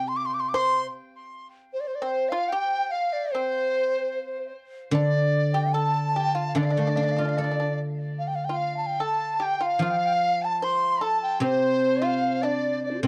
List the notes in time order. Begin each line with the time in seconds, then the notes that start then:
Already playing: C3
0.08 C6
0.16 D6
0.26 C6
0.34 D6
0.40 C6
0.49 D6
0.54 C5 C6
1.73 C5
1.80 D5
1.87 C5
1.95 D5
2.02 C4 C5
2.29 F4 F5
2.48 G4 G5
2.53 G5
2.90 F5
3.13 D5
3.32 C4 C5
4.91 D3 D4 D5
5.53 G4 G5
5.73 A4 A5
6.07 A5
6.15 G4 G5
6.35 F4 F5
6.47 F5
6.55 D3 D4 D5
6.63 D4 F5
6.70 D4 D5
6.77 A3 D4 F5
6.87 D4 D5
6.96 D4 F5
7.03 D4 D5
7.09 D4 F5
7.16 D4 F4
7.21 D5
7.25 D4 F5
7.37 D4 A4 D5
7.44 D4
7.51 D4
7.60 D4
8.19 F5
8.27 G5
8.35 F5
8.45 G5
8.49 F4 F5
8.56 F5
8.77 A5
8.86 G5
9.00 A4 A5
9.06 A5
9.40 G4 G5
9.45 G5
9.60 F4 F5
9.66 F5
9.79 F3 F4 F5
9.84 F5
9.90 G5
9.97 F5
10.06 G5
10.13 F5
10.42 A5
10.62 C5 C6
11.01 A4 A5
11.22 G5
11.40 C3 C4 C5
12.02 F4 F5
12.42 D4 D5
12.83 D5
12.91 D4 F4
12.99 G4 A4
13.03 C3 C4 C5